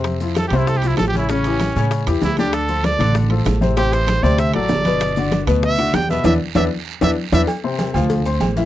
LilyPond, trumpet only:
\new Staff \with { instrumentName = "Trumpet" } { \time 4/4 \key d \dorian \tempo 4 = 194 r4 \tuplet 3/2 { a'8 g'8 e'8 a'8 g'8 e'8 a'8 g'8 e'8 } | cis'2 r4 e'8 g'8 | a'4 d''4 r2 | g'8 c''4 d''8 e''8 d''4.~ |
d''4. r8 e''4 g''8 e''8 | e''8 r8 e''8 r4 e''8 r8 e''8 | r1 | }